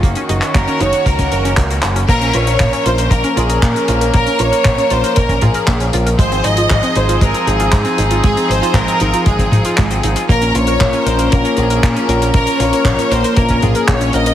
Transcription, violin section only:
X:1
M:4/4
L:1/8
Q:1/4=117
K:Bbm
V:1 name="Violin section"
z2 B d B3 z | B d2 c B A2 z | B d2 c B A2 z | c e2 c B A2 z |
A c B2 A3 z | B d2 c B A2 z | B d2 c B A d e |]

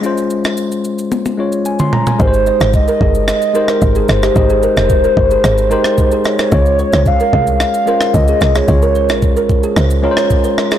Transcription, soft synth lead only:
X:1
M:4/4
L:1/16
Q:1/4=111
K:Ab
V:1 name="Soft synth lead"
z16 | c4 e4 e3 B3 c2- | c12- c2 d2- | d4 f4 f4 e3 d- |
d6- d z8 z |]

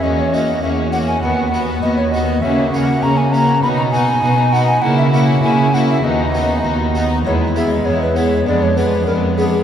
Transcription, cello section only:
X:1
M:4/4
L:1/8
Q:1/4=100
K:B
V:1 name="Cello section" clef=bass
E,,2 E,,2 D,,2 D,,2 | C,2 C,2 B,,2 B,,2 | C,2 C,2 D,,2 D,,2 | E,,2 E,,2 =F,,2 F,,2 |]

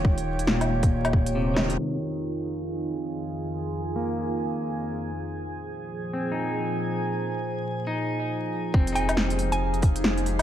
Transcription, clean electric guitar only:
X:1
M:4/4
L:1/16
Q:"Swing 16ths" 1/4=138
K:Fm
V:1 name="Clean electric guitar"
z4 B,,8 C, E,3 | E,8- E,3 z4 z | z4 B,8- B,3 z | z8 C E6- E- |
E4 z4 E8 | C E8- E3 z4 |]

